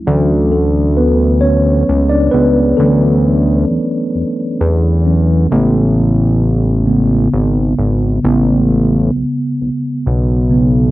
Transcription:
<<
  \new Staff \with { instrumentName = "Tine electric piano" } { \time 6/8 \key d \lydian \tempo 4. = 44 r8 <a a'>8 <b b'>8 <cis' cis''>8. <d' d''>16 <b b'>8 | <a a'>2 r4 | r2. | r2. | }
  \new Staff \with { instrumentName = "Tine electric piano" } { \clef bass \time 6/8 \key d \lydian <e fis cis'>2. | <e fis cis'>8 r2 <e fis cis'>8 | <cis gis b>4. <cis gis b>8 r4 | <cis gis b>2~ <cis gis b>8 <cis gis b>8 | }
  \new Staff \with { instrumentName = "Analog synth bass" } { \clef bass \time 6/8 \key d \lydian d,2 cis,8 cis,8 | d,4 e,8 e,8 e,4 | a,,2 gis,,8 gis,,8 | a,,4 b,,8 b,,8 b,,4 | }
>>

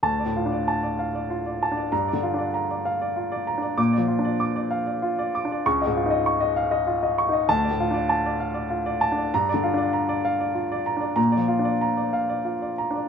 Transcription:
<<
  \new Staff \with { instrumentName = "Grand piano" } { \time 3/4 \key d \minor \tempo 4 = 97 << { a''8 r2 r8 | bes''8 r2 r8 | d'''8 r2 r8 | cis'''8 r2 r8 |
a''8 r2 r8 | bes''8 r2 r8 | bes''8 r2 r8 | } \\ { r16 d''16 f'16 d''16 a''16 d''16 f''16 d''16 f'16 d''16 a''16 d''16 | r16 d''16 f'16 d''16 bes''16 d''16 f''16 d''16 f'16 d''16 bes''16 d''16 | r16 d''16 f'16 d''16 d'''16 d''16 f''16 d''16 f'16 d''16 d'''16 d''16 | r16 dis''16 eis'16 dis''16 cis'''16 dis''16 eis''16 dis''16 eis'16 dis''16 cis'''16 dis''16 |
r16 d''16 f'16 d''16 a''16 d''16 f''16 d''16 f'16 d''16 a''16 d''16 | r16 d''16 f'16 d''16 bes''16 d''16 f''16 d''16 f'16 d''16 bes''16 d''16 | r16 d''16 f'16 d''16 bes''16 d''16 f''16 d''16 f'16 d''16 bes''16 d''16 | } >> }
  \new Staff \with { instrumentName = "Grand piano" } { \time 3/4 \key d \minor \tuplet 3/2 { d,8 a,8 d'8 } r4 \tuplet 3/2 { r4 d'8 } | \tuplet 3/2 { g,8 d8 d'8 } r4 \tuplet 3/2 { r4 d'8 } | \tuplet 3/2 { bes,8 f8 d'8 } r4 \tuplet 3/2 { r4 d'8 } | \tuplet 3/2 { cis,8 gis,8 dis'8 } r4 \tuplet 3/2 { r4 dis'8 } |
\tuplet 3/2 { d,8 a,8 d'8 } r4 \tuplet 3/2 { r4 d'8 } | \tuplet 3/2 { g,8 d8 d'8 } r4 \tuplet 3/2 { r4 d'8 } | \tuplet 3/2 { bes,8 f8 d'8 } r4 \tuplet 3/2 { r4 d'8 } | }
>>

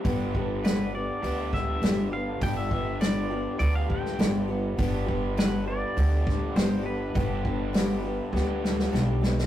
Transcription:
<<
  \new Staff \with { instrumentName = "Pedal steel guitar" } { \time 4/4 \key g \mixolydian \tempo 4 = 101 r4 b'8 d''4 e''4 f''8 | g''16 e''8. d''4 d''16 f''16 g''4 r8 | r4 b'8 d''4. c''8 b'8~ | b'2. r4 | }
  \new Staff \with { instrumentName = "Steel-string acoustic guitar" } { \time 4/4 \key g \mixolydian <g, d g b d' g'>8 <g b d' g'>8 <g, d g b d' g'>8 <g b d' g'>8 <g b d' g'>4 <g, d g b d' g'>8 <g b d' g'>8 | <g, d g b d' g'>8 <g b d' g'>8 <g, d g b d' g'>8 <g b d' g'>8 <g b d' g'>4 <g, d g b d' g'>8 <g b d' g'>8 | <g, d g b d' g'>8 <g b d' g'>8 <g, d g b d' g'>8 <g b d' g'>8 <g b d' g'>4 <g, d g b d' g'>8 <g b d' g'>8 | <g, d g b d' g'>8 <g b d' g'>8 <g, d g b d' g'>8 <g b d' g'>8 <g b d' g'>4 <g, d g b d' g'>8 <g b d' g'>8 | }
  \new Staff \with { instrumentName = "Overdriven electric guitar" } { \time 4/4 \key g \mixolydian <g, d g b d' g'>2 <g, d g b d' g'>2 | <g, d g b d' g'>2 <g, d g b d' g'>2 | <g, d g b d' g'>2 <g, d g b d' g'>2 | <g, d g b d' g'>2 <g, d g b d' g'>2 | }
  \new Staff \with { instrumentName = "Upright bass" } { \clef bass \time 4/4 \key g \mixolydian g,,2 d,4 g,,4 | g,,2 d,4 g,,4 | g,,2 d,4 g,,4 | g,,2 d,4 b,,4 | }
  \new DrumStaff \with { instrumentName = "Drums" } \drummode { \time 4/4 <hho bd>8 bd8 <hho sn>4 hho8 <bd sn>8 <hho sn>4 | <hho bd>8 bd8 <hho sn>4 hho8 bd16 sn16 <hho sn>4 | <hho bd>8 bd8 <hho sn>4 hho8 <bd sn>8 <hho sn>4 | <hho bd>8 bd8 <hho sn>4 sn8 sn16 sn16 sn8 sn16 sn16 | }
>>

